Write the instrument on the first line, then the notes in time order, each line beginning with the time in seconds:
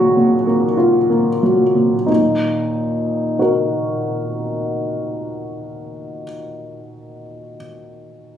upright piano
Already playing: D#2 A#2 F#3 A#3 F4 F#4
0.17 A#2
0.47 A#3
0.77 F4
1.10 A#3
1.43 F#3
1.75 A#2
2.06 D#2 A#2 D#4
3.39 F#4 A#4